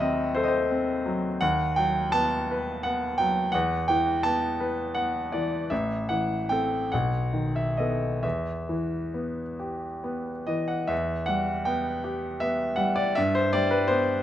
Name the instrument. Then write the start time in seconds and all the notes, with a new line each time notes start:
grand piano
Already playing: D#2 F#3 E5 F#5
0.00 C4 D#5
0.35 A4 C5
0.43 D#5
0.48 C5
0.71 C4
1.06 F#3
1.41 D#2 F#5
1.76 F#3 G5
2.12 B3 A5
2.51 B4
2.83 B3 F#5
3.18 F#3 G5
3.52 E2 F#5
3.88 E3 G5
4.23 B3 A5
4.60 B4
4.95 B3 F#5
5.32 E3 D5
5.70 A1 E5
6.09 E3 F#5
6.49 C4 A4 G5
6.92 B1 F#5
7.33 D#3
7.56 E5
7.77 B3 A4 D#5
8.23 E2 E5
8.69 E3
9.14 B3
9.60 G4
10.04 B3
10.47 E3 D#5
10.68 F#5
10.87 E2 E5
11.26 G3 F#5
11.65 B3 G5
12.04 G4
12.40 B3 E5
12.76 G3 F#5
12.96 D5
13.15 G2 E5
13.35 C5
13.53 G3 D5
13.71 B4
13.88 B3 C5